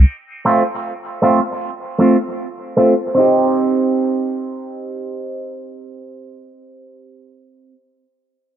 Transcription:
0.45 A3 C4 F4
1.22 A3 C4 F4
1.98 A3 C4 F4
2.77 A3 C4 F4
3.15 C4 D#4
3.20 G4

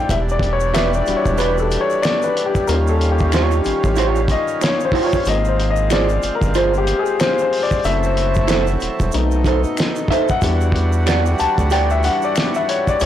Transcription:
Already playing: D#3 G3 A3 D4 A4 C5 D5 G5
0.09 E1 E3 G3 D4 E5, kick, closed hi-hat, shaker
0.29 D5, shaker
0.39 kick, closed hi-hat
0.53 C#5
0.60 shaker
0.74 G4 B4 D5 E5, finger snap, snare, closed hi-hat, shaker
0.93 D5, shaker
1.06 E1 G3 D4 F#4, closed hi-hat, shaker
1.17 C#5
1.26 E1, kick, shaker
1.38 G4 B4 D5, closed hi-hat, shaker
1.58 A4, shaker
1.71 closed hi-hat, shaker
1.81 C#5
1.90 shaker
2.02 D5, finger snap, snare, closed hi-hat, shaker
2.22 B4, shaker
2.37 closed hi-hat
2.46 G4
2.55 kick, shaker
2.67 D#2 D#3 G3 C#4 F4 A#4, closed hi-hat, shaker
2.87 A4, shaker
3.01 closed hi-hat
3.11 G4
3.18 kick, shaker
3.32 F4 G4 C#5, finger snap, snare, closed hi-hat, shaker
3.51 shaker
3.64 A1 G3 C#4 F4, closed hi-hat, shaker
3.84 A1, kick, shaker
3.96 F4 G4 C#5, closed hi-hat, shaker
4.16 shaker
4.28 D#5, kick, closed hi-hat, shaker
4.48 shaker
4.61 C#5, finger snap, muted clean electric guitar stroke, snare, closed hi-hat, shaker
4.80 shaker
4.85 C5
4.92 F4 G4 C#5, kick, open hi-hat
5.07 C#5
5.12 kick, shaker
5.25 G#1 G#3 A#3 C4 F4 D#5, closed hi-hat, shaker
5.45 C5, shaker
5.60 closed hi-hat
5.70 D#5
5.76 shaker
5.90 F4 G#4 C5 D5, finger snap, snare, closed hi-hat, shaker
6.09 shaker
6.22 G1, closed hi-hat, shaker
6.35 A#4
6.42 G1, kick, shaker
6.54 F4 G#4 C5, closed hi-hat, shaker
6.74 G4, shaker
6.87 closed hi-hat, shaker
6.99 G#4
7.06 shaker
7.20 C5, finger snap, snare, closed hi-hat, shaker
7.38 C5, shaker
7.53 open hi-hat
7.63 D5
7.71 kick, shaker
7.83 F#1 F#3 A3 C4 E4 A4 E5, closed hi-hat, shaker
8.03 C5, shaker
8.17 closed hi-hat
8.34 kick, shaker
8.48 E4 A4 C5, finger snap, snare, closed hi-hat, shaker
8.67 shaker
8.80 E1, closed hi-hat, shaker
9.00 E1, kick, shaker
9.12 B1 B2 A3 C4 D#4, closed hi-hat, shaker
9.31 shaker
9.44 D#4 A4 C5, kick, closed hi-hat, shaker
9.64 shaker
9.77 finger snap, muted clean electric guitar stroke, snare, closed hi-hat, shaker
9.96 shaker
10.08 D#4 A4 E5, kick, closed hi-hat
10.13 C5
10.28 F#5, kick, shaker
10.41 E2 E3 G3 D4 F#4, kick, closed hi-hat, shaker
10.61 shaker
10.72 kick, closed hi-hat
10.93 shaker
11.06 G4 D5 F#5, finger snap, snare, closed hi-hat, shaker
11.26 shaker
11.38 D2 A5, closed hi-hat, shaker
11.58 D2, kick, shaker
11.70 G4 D5 F#5 G5, closed hi-hat, shaker
11.90 E5, shaker
12.03 G3 D4 F#4 F#5, closed hi-hat, shaker
12.22 D5, shaker
12.36 finger snap, snare, closed hi-hat, shaker
12.54 E5, shaker
12.69 C#5, closed hi-hat
12.87 D5, kick, shaker
12.99 C#2 C#3 G3 B3 E4 C#5, closed hi-hat, shaker

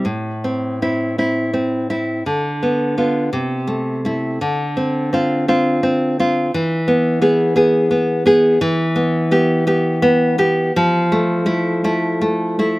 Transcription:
0.05 A2
0.44 C4
0.82 C4 E4
1.18 C4 E4
1.54 C4
1.90 C4 E4
2.26 D3
2.63 B3
2.98 B3 F4
3.33 C3
3.67 A3
4.05 A3 E4
4.41 D3
4.77 C4
5.13 C4 F4
5.48 C4 F4
5.83 C4
6.20 C4 F4
6.54 E3
6.88 B3
7.22 B3 G#4
7.56 B3 G#4
7.91 B3
8.26 B3 G#4
8.61 E3
8.96 B3
9.31 B3 G4
9.67 B3 G4
10.02 B3
10.38 B3 G4
10.76 F3
11.12 A3
11.46 A3 E4
11.84 A3 E4
12.21 A3
12.59 A3 E4

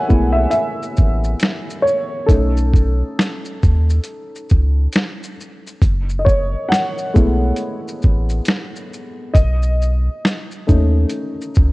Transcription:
Already playing: G#3 A3 B3 E4 C#5 E5 F#5 G#5
0.08 B1 G#3 A3 B3 E4, kick, shaker
0.32 E5
0.51 E5, closed hi-hat, shaker
0.83 shaker
0.97 A1, kick, shaker
1.24 shaker
1.40 finger snap, snare, closed hi-hat, shaker
1.70 shaker
1.82 C#5
1.87 shaker
2.26 B1 A3 C#4 D#4 A4, kick, closed hi-hat, shaker
2.57 shaker
2.73 kick, shaker
3.19 finger snap, snare, closed hi-hat, shaker
3.45 shaker
3.63 D#2, kick, shaker
3.90 shaker
4.04 closed hi-hat, shaker
4.35 shaker
4.49 C#2, kick, shaker
4.93 finger snap, snare, closed hi-hat, shaker
5.23 shaker
5.40 shaker
5.67 shaker
5.82 F#1, kick, closed hi-hat, shaker
6.09 shaker
6.19 D#5
6.25 C#5, kick, shaker
6.69 F#5, finger snap, snare
6.74 closed hi-hat, shaker
6.98 shaker
7.14 B1 G#3 A3 B3 E4, kick, shaker
7.56 closed hi-hat, shaker
7.88 shaker
8.02 A1, kick, shaker
8.29 shaker
8.45 finger snap, snare, closed hi-hat, shaker
8.76 shaker
8.93 shaker
9.33 B1 D#5, kick, closed hi-hat, shaker
9.62 shaker
9.82 shaker
10.25 finger snap, snare, closed hi-hat, shaker
10.51 shaker
10.67 D#2 A3 C#4 D#4, kick, shaker
11.10 closed hi-hat, shaker
11.41 shaker
11.55 C#2, kick, shaker

